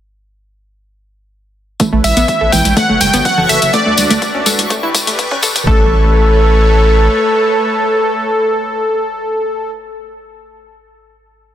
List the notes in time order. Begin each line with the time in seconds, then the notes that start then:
1.80 A3 E4 B4 C#5 C#6, kick, closed hi-hat, tambourine
1.93 A1 A3
2.04 A1 E5, open hi-hat, tambourine, high conga
2.17 A1 B3, closed hi-hat, tambourine
2.28 kick, closed hi-hat, tambourine
2.41 A1 A4
2.52 A1 E3 G5, kick, open hi-hat, tambourine, high conga
2.65 A1, closed hi-hat, tambourine, high conga
2.77 F#3 A3 F#4 A4 F#5, kick, closed hi-hat, tambourine
2.89 F#1 A3
3.01 F#1 G5, open hi-hat, tambourine, high conga
3.13 G1 B3, closed hi-hat, tambourine
3.25 F#5, kick, closed hi-hat, tambourine
3.37 F#1 A4, low conga
3.49 F#1 A4 E5, open hi-hat, tambourine
3.62 F#1, closed hi-hat, tambourine
3.73 D3 A3 D4 F#4 D5, kick, closed hi-hat, tambourine
3.86 D2 A3
3.97 D2, open hi-hat, tambourine, high conga
4.10 D2 A3, closed hi-hat, tambourine
4.22 kick, closed hi-hat, tambourine
4.35 D2 C#4
4.46 D2 A4, open hi-hat, tambourine, high conga
4.58 D2, closed hi-hat, tambourine, high conga
4.70 G3 A3 G4 B4 D5, kick, closed hi-hat, tambourine
4.83 G1 E4
4.95 G1, kick, open hi-hat, tambourine, high conga
5.07 A1 A3, closed hi-hat, tambourine
5.19 kick, closed hi-hat, tambourine
5.31 G1 C#4, kick
5.43 G1 A4, kick, open hi-hat, tambourine
5.55 G1, kick, closed hi-hat, tambourine, low conga
5.67 A1 A3 A4 B4 C#5, kick